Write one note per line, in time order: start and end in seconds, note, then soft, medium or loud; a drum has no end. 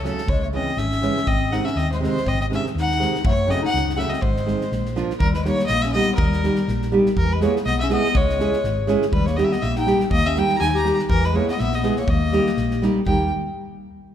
0.04 0.20 C#3 medium
0.04 0.21 F#3 medium
0.04 0.21 A3 medium
0.04 0.21 C#4 medium
0.04 0.31 A4 medium
0.04 snare soft
0.18 snare soft
0.27 0.57 C#2 loud
0.27 0.43 G#3 medium
0.27 0.42 C#5 loud
0.27 kick medium
0.43 0.49 A3 medium
0.43 0.48 C#5 medium
0.53 0.69 C#3 medium
0.53 0.70 E3 medium
0.53 0.70 G#3 medium
0.53 0.80 C4 medium
0.53 0.70 C#4 medium
0.53 0.80 D#5 loud
0.77 1.07 G#1 medium
0.77 1.29 C#4 medium
0.77 1.29 E5 loud
0.77 snare soft
0.92 snare soft
1.01 1.18 C#3 medium
1.01 1.19 E3 medium
1.01 1.19 G#3 medium
1.01 1.19 C#4 medium
1.01 snare soft
1.17 snare soft
1.27 1.57 G#1 loud
1.27 1.54 C4 medium
1.27 1.54 D#5 medium
1.27 kick medium
1.51 1.68 C3 medium
1.51 1.68 D#3 medium
1.51 1.69 G#3 medium
1.51 1.68 C4 medium
1.51 1.67 D#4 medium
1.51 1.67 F#5 medium
1.51 snare soft
1.65 1.80 C#4 medium
1.65 1.79 E5 medium
1.65 snare soft
1.76 2.06 D#2 medium
1.76 1.91 C4 medium
1.76 1.91 D#5 medium
1.76 snare soft
1.92 2.02 G#3 medium
1.92 2.02 C5 medium
1.92 snare soft
2.00 2.17 C3 medium
2.00 2.17 D#3 medium
2.00 2.17 G#3 medium
2.00 2.28 G#3 medium
2.00 2.18 C4 medium
2.00 snare soft
2.05 2.30 C5 medium
2.17 snare soft
2.26 2.55 G#1 loud
2.26 2.40 C4 medium
2.26 2.41 D#5 loud
2.26 kick medium
2.41 2.46 C4 medium
2.41 2.46 D#5 medium
2.50 2.66 C3 medium
2.50 2.66 D#3 medium
2.50 2.67 G#3 medium
2.50 2.67 C4 medium
2.50 2.64 C#4 medium
2.50 snare soft
2.55 2.65 E5 loud
2.66 snare soft
2.75 3.04 D#2 medium
2.75 3.22 D#4 medium
2.75 snare soft
2.80 3.23 F#5 loud
2.91 snare soft
2.99 3.15 C3 medium
2.99 3.15 D#3 medium
2.99 3.16 G#3 medium
2.99 3.16 C4 medium
2.99 snare soft
3.15 snare soft
3.24 3.54 F#1 medium
3.24 3.49 A3 medium
3.24 3.52 C#5 loud
3.24 kick loud
3.47 3.64 C#3 medium
3.47 3.64 F#3 medium
3.47 3.65 A3 medium
3.47 3.62 C4 medium
3.47 3.64 C#4 medium
3.47 snare soft
3.51 3.64 D#5 loud
3.62 3.93 D#4 medium
3.62 3.95 F#5 loud
3.62 snare soft
3.74 4.03 C#2 loud
3.74 snare soft
3.89 snare soft
3.95 4.13 C#3 medium
3.95 4.13 F#3 medium
3.95 4.13 A3 medium
3.95 4.14 C#4 medium
3.95 4.00 D#4 medium
3.95 4.12 E5 medium
3.95 3.99 F#5 medium
4.00 snare soft
4.10 4.24 C4 medium
4.10 4.23 D#5 medium
4.10 snare soft
4.22 4.52 G#1 loud
4.22 4.96 G#3 medium
4.22 4.96 C5 medium
4.22 kick medium
4.37 snare soft
4.46 4.62 D#3 medium
4.46 4.63 G#3 medium
4.46 4.63 C4 medium
4.46 4.63 D#4 medium
4.46 snare soft
4.61 snare soft
4.72 5.01 A#1 medium
4.72 snare soft
4.85 snare soft
4.96 5.12 F3 medium
4.96 5.12 A#3 medium
4.96 5.12 D4 medium
4.96 5.13 F4 medium
4.96 snare soft
5.10 snare soft
5.19 5.50 D#2 medium
5.19 5.34 G3 medium
5.19 5.33 A#4 loud
5.19 kick medium
5.34 5.45 G#3 medium
5.34 5.44 B4 medium
5.34 snare soft
5.45 5.61 G3 medium
5.45 5.61 A#3 medium
5.45 5.69 A#3 medium
5.45 5.61 D#4 medium
5.45 5.62 G4 medium
5.45 5.66 C#5 loud
5.45 snare soft
5.59 snare soft
5.66 5.99 A#1 loud
5.66 5.84 D#5 loud
5.66 snare soft
5.72 5.86 A#3 medium
5.82 5.95 C#4 medium
5.82 5.92 E5 medium
5.82 snare soft
5.92 6.10 G3 medium
5.92 6.11 A#3 medium
5.92 6.11 D#4 medium
5.92 6.15 D#5 loud
5.92 snare soft
5.97 6.19 B3 medium
5.97 6.11 G4 medium
6.15 6.48 D#2 loud
6.15 6.87 A#4 medium
6.15 kick loud
6.21 6.90 G3 medium
6.32 snare soft
6.43 6.59 G3 medium
6.43 6.60 A#3 medium
6.43 6.60 D#4 medium
6.43 6.60 G4 medium
6.43 snare soft
6.55 snare soft
6.67 6.97 A#1 loud
6.67 snare soft
6.82 snare soft
6.92 7.08 G3 medium
6.92 7.09 A#3 medium
6.92 7.09 D#4 medium
6.92 7.09 G4 medium
7.06 snare soft
7.17 7.46 E2 medium
7.17 7.34 A#4 medium
7.17 kick medium
7.22 7.37 E3 medium
7.33 7.44 G#3 medium
7.33 7.42 B4 medium
7.40 7.57 G#3 medium
7.40 7.57 B3 medium
7.40 7.57 E4 medium
7.40 7.58 G#4 medium
7.40 7.53 C#5 medium
7.40 snare soft
7.45 7.56 A#3 medium
7.56 snare soft
7.66 7.95 B1 medium
7.66 7.80 B3 medium
7.66 7.79 D#5 loud
7.66 snare soft
7.80 7.91 C#4 medium
7.80 7.90 E5 medium
7.80 snare soft
7.89 8.06 G#3 medium
7.89 8.06 B3 medium
7.89 8.17 B3 medium
7.89 8.06 E4 medium
7.89 8.06 G#4 medium
7.89 8.18 D#5 loud
7.89 snare soft
8.05 snare soft
8.14 8.44 C#2 loud
8.14 8.89 G#3 medium
8.14 8.90 C#5 loud
8.14 kick loud
8.29 snare soft
8.39 8.55 G#3 medium
8.39 8.56 C#4 medium
8.39 8.56 E4 medium
8.39 8.56 G#4 medium
8.39 snare soft
8.53 snare soft
8.64 8.94 G#1 medium
8.64 snare soft
8.87 9.04 G#3 medium
8.87 9.05 C#4 medium
8.87 9.05 E4 medium
8.87 9.05 G#4 medium
8.87 snare soft
9.02 snare soft
9.12 9.42 D#2 medium
9.12 9.29 G3 medium
9.12 9.27 B4 medium
9.12 kick medium
9.26 9.39 A#3 medium
9.26 9.38 C#5 medium
9.26 snare soft
9.37 9.54 G3 medium
9.37 9.54 A#3 medium
9.37 9.47 B3 medium
9.37 9.54 D#4 medium
9.37 9.54 G4 medium
9.37 9.46 D#5 medium
9.37 snare soft
9.45 9.52 C#4 medium
9.45 9.54 E5 medium
9.50 9.64 B3 medium
9.50 9.64 D#5 medium
9.50 snare soft
9.62 9.92 A#1 medium
9.62 9.76 A#3 medium
9.62 9.76 E5 loud
9.62 snare soft
9.76 10.00 D#4 medium
9.76 10.00 G5 medium
9.76 snare soft
9.86 10.03 G3 medium
9.86 10.03 A#3 medium
9.86 10.03 D#4 medium
9.86 10.03 G4 medium
9.86 snare soft
10.00 snare soft
10.11 10.41 D#2 medium
10.11 10.29 A#3 medium
10.11 10.28 D#5 loud
10.11 kick medium
10.25 10.39 C#4 medium
10.25 10.40 E5 loud
10.25 snare soft
10.36 10.52 G3 medium
10.36 10.52 A#3 medium
10.36 10.61 D#4 medium
10.36 10.53 D#4 medium
10.36 10.53 G4 medium
10.36 10.58 G5 loud
10.36 snare soft
10.49 snare soft
10.57 10.90 D#2 medium
10.57 10.64 G4 medium
10.57 10.72 G#5 loud
10.57 10.61 A#5 medium
10.62 10.74 D#4 medium
10.62 snare soft
10.72 10.98 G4 loud
10.72 10.97 A#5 loud
10.72 snare soft
10.84 11.01 G3 medium
10.84 11.01 A#3 medium
10.84 11.01 D#4 medium
10.84 11.02 G4 medium
10.84 snare soft
10.99 snare soft
11.09 11.39 E2 loud
11.09 11.27 E3 medium
11.09 11.27 A#4 loud
11.09 kick medium
11.24 11.37 G#3 medium
11.24 11.37 B4 medium
11.24 snare soft
11.33 11.50 G#3 medium
11.33 11.49 A#3 medium
11.33 11.51 B3 medium
11.33 11.51 E4 medium
11.33 11.51 G#4 medium
11.33 11.49 C#5 loud
11.48 11.60 B3 medium
11.48 11.61 D#5 medium
11.48 snare soft
11.59 11.89 A#1 loud
11.59 11.75 B3 medium
11.59 11.76 E5 loud
11.59 snare soft
11.72 11.99 B3 medium
11.72 11.98 D#5 medium
11.72 snare soft
11.83 12.00 G#3 medium
11.83 12.00 B3 medium
11.83 12.00 E4 medium
11.83 12.01 G#4 medium
11.83 snare soft
11.96 12.11 C#5 medium
11.96 snare soft
12.00 12.11 A#3 medium
12.08 12.38 D#2 loud
12.08 12.84 A#3 medium
12.08 12.83 D#5 medium
12.08 kick loud
12.32 12.49 G3 medium
12.32 12.49 A#3 medium
12.32 12.49 D#4 medium
12.32 12.50 G4 medium
12.32 snare soft
12.46 snare soft
12.57 12.87 A#1 medium
12.57 snare soft
12.71 snare soft
12.82 12.98 G3 medium
12.82 12.98 A#3 medium
12.82 12.99 D#4 medium
12.82 12.99 G4 medium
12.82 snare soft
13.06 13.30 D#2 medium
13.06 13.30 G3 medium
13.06 13.30 A#3 medium
13.06 13.30 D#4 medium
13.06 13.30 G4 medium
13.06 13.29 G5 medium
13.06 kick medium